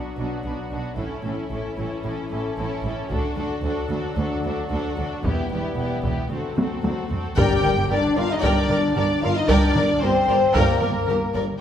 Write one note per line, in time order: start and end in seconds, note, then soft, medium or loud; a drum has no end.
0.00 0.95 F#3 soft
0.00 0.17 B3 soft
0.00 0.16 D4 soft
0.00 0.95 D4 soft
0.00 0.18 F#4 soft
0.17 0.26 B1 soft
0.17 0.27 B2 soft
0.17 0.43 B3 soft
0.17 0.44 D4 soft
0.17 0.44 F#4 soft
0.44 0.52 B1 soft
0.44 0.54 B2 soft
0.44 0.71 B3 soft
0.44 0.69 D4 soft
0.44 0.70 F#4 soft
0.71 0.80 B1 soft
0.71 0.81 B2 soft
0.71 0.99 B3 soft
0.71 0.98 D4 soft
0.71 0.98 F#4 soft
0.96 1.06 A1 soft
0.96 1.06 A2 soft
0.96 3.08 E3 soft
0.96 3.08 C#4 soft
0.96 1.25 E4 soft
0.96 1.23 A4 soft
1.00 1.26 C#4 soft
1.24 1.32 A1 soft
1.24 1.33 A2 soft
1.24 1.51 C#4 soft
1.24 1.52 E4 soft
1.24 1.49 A4 soft
1.50 1.59 A1 soft
1.50 1.61 A2 soft
1.50 1.77 C#4 soft
1.50 1.77 E4 soft
1.50 1.77 A4 soft
1.78 1.86 A1 soft
1.78 1.86 A2 soft
1.78 2.05 C#4 soft
1.78 2.04 E4 soft
1.78 2.03 A4 soft
2.04 2.13 A1 soft
2.04 2.12 A2 medium
2.04 2.32 C#4 soft
2.04 2.31 E4 soft
2.04 2.31 A4 soft
2.31 2.39 A1 soft
2.31 2.39 A2 soft
2.31 2.59 C#4 soft
2.31 2.58 E4 soft
2.31 2.56 A4 soft
2.58 2.66 A1 soft
2.58 2.66 A2 medium
2.58 2.86 C#4 soft
2.58 2.85 E4 medium
2.58 2.83 A4 soft
2.83 2.91 A1 medium
2.83 2.93 A2 soft
2.83 3.12 E4 soft
2.83 3.10 A4 medium
2.88 3.13 C#4 soft
3.10 3.18 D2 soft
3.10 3.19 D2 medium
3.10 5.21 F#3 medium
3.10 5.21 D4 medium
3.10 3.38 D4 medium
3.10 3.38 F#4 medium
3.10 3.37 A4 medium
3.10 taiko medium
3.36 3.44 D2 medium
3.36 3.46 D2 medium
3.36 3.65 D4 soft
3.36 3.64 F#4 soft
3.36 3.63 A4 soft
3.63 3.71 D2 medium
3.63 3.72 D2 soft
3.63 3.92 D4 soft
3.63 3.89 F#4 medium
3.63 3.91 A4 soft
3.90 3.98 D2 medium
3.90 3.99 D2 medium
3.90 4.17 F#4 soft
3.90 4.15 A4 soft
3.94 4.18 D4 soft
4.16 4.25 D2 medium
4.16 4.45 D4 soft
4.16 4.43 F#4 soft
4.16 4.43 A4 medium
4.43 4.51 D2 medium
4.43 4.53 D2 medium
4.43 4.70 D4 soft
4.43 4.70 F#4 soft
4.43 4.69 A4 soft
4.71 4.79 D2 medium
4.71 4.80 D2 medium
4.71 4.97 D4 soft
4.71 4.97 F#4 medium
4.71 4.94 A4 soft
4.96 5.05 D2 medium
4.96 5.07 D2 soft
4.96 5.25 D4 soft
4.96 5.25 F#4 soft
4.96 5.23 A4 medium
5.24 5.32 E1 medium
5.24 5.32 E2 medium
5.24 6.14 G3 medium
5.24 6.14 B3 medium
5.24 5.50 B3 soft
5.24 5.52 E4 medium
5.24 5.51 G4 medium
5.24 taiko medium
5.51 5.59 E1 medium
5.51 5.59 E2 medium
5.51 5.77 B3 soft
5.51 5.77 E4 soft
5.51 5.77 G4 soft
5.77 5.85 E1 soft
5.77 5.86 E2 soft
5.77 6.04 B3 soft
5.77 6.04 E4 soft
5.77 6.03 G4 soft
6.03 6.11 E1 medium
6.03 6.12 E2 soft
6.03 6.31 B3 soft
6.03 6.31 E4 soft
6.03 6.30 G4 soft
6.03 taiko medium
6.30 6.38 D2 soft
6.30 7.07 F#3 soft
6.30 7.07 C4 soft
6.30 6.58 C4 soft
6.30 6.55 F#4 soft
6.30 6.58 A4 soft
6.56 6.64 D2 soft
6.56 6.65 D2 soft
6.56 6.83 C4 soft
6.56 6.82 F#4 soft
6.56 6.85 A4 soft
6.56 taiko high medium
6.83 6.91 D2 soft
6.83 6.92 D2 soft
6.83 7.11 C4 soft
6.83 7.10 F#4 soft
6.83 7.11 A4 soft
6.83 taiko high medium
7.11 7.19 D2 soft
7.11 7.38 C4 soft
7.11 7.37 F#4 soft
7.11 7.38 A4 soft
7.11 taiko low medium
7.37 7.45 G1 medium
7.37 7.48 G1 medium
7.37 8.13 G2 loud
7.37 7.46 G2 medium
7.37 7.87 G4 medium
7.37 7.62 A#4 medium
7.37 7.62 D5 medium
7.37 7.62 G5 medium
7.37 7.87 G5 medium
7.37 7.88 G5 medium
7.37 taiko loud
7.37 impact medium
7.63 7.71 G1 medium
7.63 7.75 G1 soft
7.63 7.73 G2 medium
7.63 7.72 A#4 soft
7.63 7.73 A#4 soft
7.63 7.73 D5 soft
7.63 taiko mid soft
7.89 7.97 G1 medium
7.89 8.02 G1 medium
7.89 7.99 G2 medium
7.89 8.18 D4 medium
7.89 7.99 G4 medium
7.89 7.98 A#4 medium
7.89 7.99 A#4 medium
7.89 8.20 D5 medium
7.89 8.18 D5 medium
8.16 8.24 G1 medium
8.16 8.27 G1 medium
8.16 8.25 G2 medium
8.16 8.31 F4 medium
8.16 8.25 A#4 soft
8.16 8.26 A#4 soft
8.16 8.24 D5 medium
8.16 8.29 F5 medium
8.16 8.31 F5 medium
8.30 8.43 D#4 medium
8.30 8.45 D#5 medium
8.42 8.50 G1 medium
8.42 8.54 G1 medium
8.42 8.52 G2 medium
8.42 8.96 D4 medium
8.42 8.69 A#4 medium
8.42 8.67 D5 medium
8.42 8.96 D5 medium
8.42 8.67 G5 medium
8.42 taiko medium
8.69 8.77 G1 medium
8.69 8.82 G1 medium
8.69 8.79 G2 medium
8.69 8.79 A#4 medium
8.69 8.78 D5 medium
8.69 taiko mid medium
8.96 9.04 G1 medium
8.96 9.08 G1 medium
8.96 9.05 G2 medium
8.96 9.23 D4 medium
8.96 9.05 G4 medium
8.96 9.05 A#4 medium
8.96 9.23 D5 medium
8.96 taiko mid medium
9.23 9.31 G1 medium
9.23 9.36 G1 medium
9.23 9.31 G2 soft
9.23 9.36 F4 medium
9.23 9.31 A#4 medium
9.23 9.32 A#4 medium
9.23 9.31 D5 soft
9.23 9.36 F5 medium
9.36 9.50 D#4 medium
9.36 9.49 D#5 medium
9.49 9.57 G1 medium
9.49 9.61 G1 medium
9.49 9.58 G2 medium
9.49 10.03 D4 medium
9.49 9.74 A#4 medium
9.49 9.74 D5 medium
9.49 10.03 D5 medium
9.49 10.02 D5 medium
9.49 9.75 G5 medium
9.49 taiko medium
9.76 9.84 G1 medium
9.76 9.88 G1 medium
9.76 9.84 G2 medium
9.76 9.85 A#4 medium
9.76 9.85 D5 medium
9.76 taiko mid medium
10.01 10.10 G1 medium
10.01 10.14 G1 medium
10.01 10.11 G2 medium
10.01 10.55 C4 medium
10.01 10.11 G4 medium
10.01 10.10 A#4 soft
10.01 10.12 A#4 medium
10.01 10.55 C5 medium
10.28 10.36 G1 medium
10.28 10.40 G1 medium
10.28 10.38 G2 medium
10.28 10.36 A#4 medium
10.28 10.38 A#4 medium
10.28 10.37 D5 medium
10.54 10.63 G1 medium
10.54 10.66 G1 medium
10.54 10.65 G2 medium
10.54 11.34 A#3 medium
10.54 10.79 A#4 medium
10.54 11.35 A#4 medium
10.54 11.34 A#4 medium
10.54 10.81 D5 medium
10.54 10.81 G5 medium
10.54 taiko medium
10.80 10.90 G1 medium
10.80 10.93 G1 medium
10.80 10.91 G2 medium
10.80 10.89 A#4 medium
10.80 10.90 A#4 medium
10.80 10.90 D5 soft
10.80 taiko mid medium
11.07 11.16 G1 medium
11.07 11.19 G1 medium
11.07 11.18 G2 medium
11.07 11.18 G4 medium
11.07 11.15 A#4 medium
11.07 11.18 A#4 medium
11.07 taiko mid medium
11.35 11.43 G1 medium
11.35 11.46 G1 medium
11.35 11.43 G2 medium
11.35 11.43 A#4 medium
11.35 11.43 D5 medium